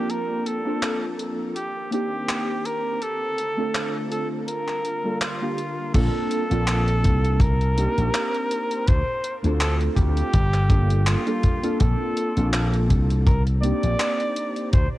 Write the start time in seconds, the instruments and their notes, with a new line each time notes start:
Already playing: string machine F3, synth keys A#3 C4 D4 F4 A#4, flugelhorn G4
0.10 string machine A#3 D4 A5, flugelhorn A#4, closed hi-hat
0.46 flugelhorn A4, closed hi-hat
0.65 synth keys A#3 C4 D4 F4 A4
0.83 clap, closed hi-hat
1.19 closed hi-hat
1.56 string machine D#3 A#3 C4 G4, flugelhorn G4, closed hi-hat
1.91 synth keys A#3 C4 D4 D#4 G4, flugelhorn G4, closed hi-hat
2.29 clap, closed hi-hat
2.65 flugelhorn A#4, closed hi-hat
3.02 string machine D3 A3 C4 F4, flugelhorn A4, closed hi-hat
3.38 closed hi-hat
3.57 synth keys A3 C4 D4 F4 A4
3.75 clap, closed hi-hat
4.12 flugelhorn A4, closed hi-hat
4.48 string machine G3 A#3, flugelhorn A#4, closed hi-hat
4.68 clap
4.85 closed hi-hat
5.04 synth keys G3 A#3 D4 F4 A4
5.21 flugelhorn F4, clap, closed hi-hat
5.41 synth keys G3 A#3 D4 F4 G4
5.58 closed hi-hat
5.94 slap bass A#1, synth keys A#3 C4 D4 F4 A4, string machine A#3 F5 A5 D6, flugelhorn A4, kick, closed hi-hat, crash
6.31 closed hi-hat
6.50 slap bass A#1, synth keys A#3 C4 D4 F4 A4, closed hi-hat
6.68 clap, closed hi-hat
6.88 closed hi-hat
7.04 slap bass C2, kick, closed hi-hat
7.25 closed hi-hat
7.40 flugelhorn A#4, string machine C5 G5 A#5 D#6, kick, closed hi-hat
7.61 closed hi-hat
7.76 synth keys A#3 C4 D4 D#4 G4, closed hi-hat
7.98 slap bass A#1, closed hi-hat
8.14 clap, closed hi-hat
8.34 closed hi-hat
8.51 closed hi-hat
8.71 closed hi-hat
8.87 slap bass D2, flugelhorn C5, string machine F5 A5 D6, kick, closed hi-hat
9.24 closed hi-hat
9.43 slap bass D2, synth keys A3 C4 D4 F4 A4, closed hi-hat
9.61 flugelhorn A4, clap, closed hi-hat
9.81 closed hi-hat
9.96 slap bass D2, flugelhorn G4, kick, closed hi-hat
10.17 closed hi-hat
10.34 slap bass G1, string machine A#3 G5 D6, kick, closed hi-hat
10.54 clap, closed hi-hat
10.69 synth keys G3 A#3 D4 F4 A4, kick, closed hi-hat
10.90 closed hi-hat
11.07 flugelhorn F4, clap, closed hi-hat
11.26 synth keys G3 A#3 D4 F4 A4, closed hi-hat
11.43 kick, closed hi-hat
11.63 synth keys A#3 C4 D4 F4 A4, closed hi-hat
11.80 slap bass A#1, flugelhorn A4, string machine F5 A5, kick, closed hi-hat
12.17 closed hi-hat
12.36 slap bass A#1, synth keys A#3 C4 D4 F4 A4, closed hi-hat
12.53 clap, closed hi-hat
12.73 closed hi-hat
12.90 slap bass C2, kick, closed hi-hat
13.10 closed hi-hat
13.26 flugelhorn A#4, string machine C5 G5 A#5, kick, closed hi-hat
13.47 closed hi-hat
13.61 synth keys A#3 C4 D4 D#4 G4, flugelhorn D5, closed hi-hat
13.83 slap bass A#1, closed hi-hat
14.00 clap, closed hi-hat
14.20 closed hi-hat
14.36 closed hi-hat
14.56 closed hi-hat
14.72 slap bass D2, flugelhorn C5, string machine F5 A5 D6, kick, closed hi-hat